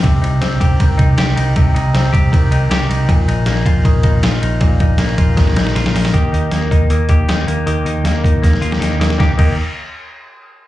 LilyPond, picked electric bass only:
\new Staff \with { instrumentName = "Picked electric bass" } { \clef bass \time 4/4 \key ees \major \tempo 4 = 157 c,8 c,8 c,8 c,8 c,8 c,8 c,8 c,8 | c,8 c,8 c,8 c,8 c,8 c,8 c,8 c,8 | bes,,8 bes,,8 bes,,8 bes,,8 bes,,8 bes,,8 bes,,8 bes,,8 | bes,,8 bes,,8 bes,,8 bes,,8 bes,,8 bes,,8 bes,,8 bes,,8 |
ees,8 ees,8 ees,8 ees,8 ees,8 ees,8 ees,8 ees,8 | ees,8 ees,8 ees,8 ees,8 ees,8 ees,8 ees,8 ees,8 | ees,8 ees,8 r2. | }